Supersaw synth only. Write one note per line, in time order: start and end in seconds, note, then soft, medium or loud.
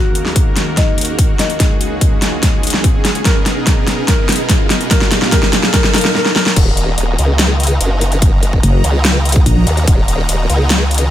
0.00 1.58 D#2 medium
0.00 1.58 D#3 medium
0.00 1.58 A#3 medium
0.00 3.22 F#4 medium
0.00 1.58 A#4 medium
1.60 3.24 C#2 medium
1.60 3.24 C#3 medium
1.60 3.24 G#3 medium
1.60 4.88 G#4 medium
3.25 4.89 B2 medium
3.25 4.89 B3 medium
3.25 4.89 D#4 medium
3.25 4.89 A#4 medium
4.91 6.14 A#2 medium
4.91 6.14 A#3 medium
4.91 6.14 D4 medium
4.91 6.14 F4 medium
4.91 6.14 F5 medium
6.56 11.11 D#3 medium
6.56 11.11 A#3 medium
6.56 11.11 F#4 medium
6.56 11.11 D#5 medium
6.56 11.11 A#5 medium